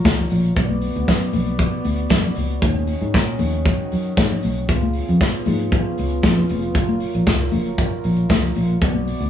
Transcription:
Already playing: F#3 F4 A#4
0.04 C#2, kick, snare, closed hi-hat, muted conga, high conga
0.17 low conga
0.30 A#1, open hi-hat, high conga
0.44 closed hi-hat
0.56 B1 B3 F#4 D5, kick, closed hi-hat
0.69 high conga
0.81 open hi-hat
0.95 D2, closed hi-hat
1.08 F#2, kick, snare, closed hi-hat
1.33 B1, open hi-hat, high conga, low conga
1.46 closed hi-hat
1.59 kick, closed hi-hat, low conga
1.84 D2, open hi-hat, muted conga
1.96 closed hi-hat
2.10 F#2, kick, snare, closed hi-hat, muted conga, high conga
2.23 low conga
2.35 C#2, open hi-hat, muted conga, high conga
2.49 closed hi-hat
2.62 D#2 D#3 C#4 F#4, kick, closed hi-hat, muted conga
2.74 high conga
2.87 open hi-hat, muted conga
3.01 G#2, closed hi-hat
3.14 A#2, kick, snare, closed hi-hat
3.39 D#2, open hi-hat, muted conga, high conga, low conga
3.53 closed hi-hat
3.65 kick, closed hi-hat, low conga
3.91 F#2, open hi-hat
4.04 closed hi-hat
4.17 G#2, kick, snare, closed hi-hat, muted conga, high conga
4.30 low conga
4.43 B1, open hi-hat, muted conga, high conga
4.57 closed hi-hat
4.69 C#2 C#3 B3 F4, kick, closed hi-hat, muted conga
4.83 high conga
4.94 open hi-hat, muted conga
5.08 F2, closed hi-hat
5.21 kick, snare, closed hi-hat
5.46 G#2, open hi-hat, high conga, low conga
5.59 closed hi-hat
5.72 kick, closed hi-hat, muted conga, low conga
5.98 C#2, open hi-hat, muted conga
6.10 closed hi-hat
6.23 F2, kick, snare, closed hi-hat, muted conga, high conga
6.37 low conga
6.49 F1, open hi-hat, high conga
6.62 closed hi-hat
6.74 F#1 F#3 A#4, kick, closed hi-hat, muted conga
6.88 high conga
7.00 open hi-hat, muted conga
7.14 A#1, closed hi-hat
7.26 C#2, kick, snare, closed hi-hat
7.52 F#1, open hi-hat, muted conga, high conga, low conga
7.66 closed hi-hat
7.78 kick, closed hi-hat, muted conga, low conga
8.04 A#1, open hi-hat
8.17 closed hi-hat
8.29 C#2, kick, snare, closed hi-hat, muted conga, high conga
8.42 low conga
8.55 A#1, open hi-hat, muted conga, high conga
8.69 closed hi-hat
8.81 B1 B3 F#4 D5, kick, closed hi-hat, muted conga
8.94 high conga
9.07 open hi-hat, muted conga
9.20 D2, closed hi-hat

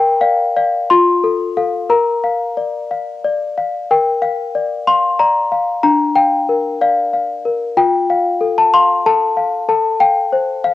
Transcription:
Already playing: A#4 G5
0.21 D5 F5
0.57 D5 F5
0.90 F4 C6
1.24 A4
1.57 A4 F5
1.90 A#4 A#5
2.24 F5
2.57 D5
2.91 F5
3.25 D5
3.58 F5
3.91 A#4 G5
4.22 F5
4.55 D5
4.87 F5 C6
5.19 D5 A#5
5.52 F5
5.83 D4 A#5
6.16 F5 G5
6.49 A#4
6.81 D5 F5
7.13 F5
7.45 A#4
7.77 F4 G5
8.10 F5
8.41 A4
8.58 A5
8.74 F5 C6
9.06 A4 A5
9.37 F5
9.69 A4 A5
10.00 F5 G5
10.33 C5
10.64 F5

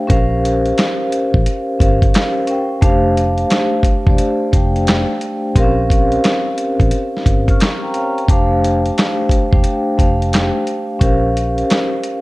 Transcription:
Already playing: A3 D4 G4 C5 F5 G5
0.07 A#1 C#4 G4 A#4 C5 F5, kick, closed hi-hat
0.45 closed hi-hat
0.66 closed hi-hat
0.78 snare, clap, closed hi-hat
1.12 closed hi-hat
1.34 A1, kick
1.46 closed hi-hat
1.79 G1 C#4 G4 A#4 C5 F5, kick, closed hi-hat
2.02 kick, closed hi-hat
2.14 snare, clap, closed hi-hat
2.47 C#4 G4 A#4 C5 G5, closed hi-hat
2.81 F1 A3 D4 G4 C5 F5, kick, closed hi-hat
3.17 closed hi-hat
3.38 closed hi-hat
3.50 snare, clap, closed hi-hat
3.83 kick, closed hi-hat
4.07 E1 A3 D4 G4 C5 D5, kick
4.18 closed hi-hat
4.52 F1 A3 D4 G4 C5 G5, kick, closed hi-hat
4.76 closed hi-hat
4.87 snare, clap, closed hi-hat
5.21 closed hi-hat
5.55 A#1 C4 G4 A#4 C5, kick, closed hi-hat
5.60 C#4 F5
5.90 kick, closed hi-hat
6.12 closed hi-hat
6.24 snare, clap, closed hi-hat
6.58 closed hi-hat
6.80 A1, kick, closed hi-hat
6.91 closed hi-hat
7.17 snare
7.26 G1, kick, closed hi-hat
7.48 C#6 F6, kick, closed hi-hat
7.60 A#5 C#6, snare, clap, closed hi-hat
7.82 G5 A#5
7.94 C#5 F5, closed hi-hat
8.15 G5, closed hi-hat
8.28 F1 A3 D4 G4 C5, kick, closed hi-hat
8.33 F5
8.64 closed hi-hat
8.86 closed hi-hat
8.98 snare, clap, closed hi-hat
9.29 kick, closed hi-hat
9.51 E1 A3 D4 G4 C5 G5, kick
9.64 closed hi-hat
9.98 F1 A3 D4 G4 C5 F5, kick, closed hi-hat
10.22 closed hi-hat
10.33 snare, clap, closed hi-hat
10.67 closed hi-hat
10.99 A#1 C#4 G4 A#4 C5, kick, closed hi-hat
11.03 F5
11.37 closed hi-hat
11.58 closed hi-hat
11.70 snare, clap, closed hi-hat
12.04 closed hi-hat

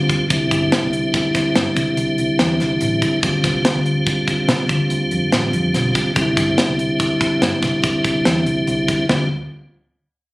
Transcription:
Already playing: D3 G3 C4 F4
0.09 kick, closed hi-hat
0.29 C2 D3 G3 C4 E4, kick, closed hi-hat
0.51 G1, kick, closed hi-hat
0.72 snare, closed hi-hat
0.83 C2
0.93 closed hi-hat
1.14 kick, snare, closed hi-hat
1.35 kick, snare, closed hi-hat
1.56 G2, snare, closed hi-hat
1.76 C3, kick, closed hi-hat
1.97 C2, closed hi-hat
2.18 C2, closed hi-hat
2.39 E2, snare, closed hi-hat
2.60 C2, snare, closed hi-hat
2.81 A1, closed hi-hat
3.02 kick, closed hi-hat
3.21 D2 D3 G3 C4 F4, kick, closed hi-hat
3.44 C2, kick, snare, closed hi-hat
3.65 snare, closed hi-hat
3.75 D2
3.86 closed hi-hat
4.07 kick, closed hi-hat
4.28 kick, closed hi-hat
4.48 C3, snare, closed hi-hat
4.69 D3, kick, closed hi-hat
4.90 D2, closed hi-hat
5.11 F2, closed hi-hat
5.32 A1, snare, closed hi-hat
5.53 F2, closed hi-hat
5.74 B1, snare, closed hi-hat
5.95 kick, closed hi-hat
6.14 C2 D3 G3 C4, kick, closed hi-hat
6.18 E4
6.37 G1, kick, closed hi-hat
6.58 snare, closed hi-hat
6.68 C2
6.79 closed hi-hat
7.00 kick, closed hi-hat
7.21 kick, closed hi-hat
7.42 G2, snare, closed hi-hat
7.62 C3, kick, snare, closed hi-hat
7.84 C2, kick, closed hi-hat
8.04 C2, kick, closed hi-hat
8.25 E2, snare, closed hi-hat
8.46 C2, closed hi-hat
8.67 C2, closed hi-hat
8.88 kick, closed hi-hat
9.09 D2 D3 G3 C4 F4, snare, floor tom

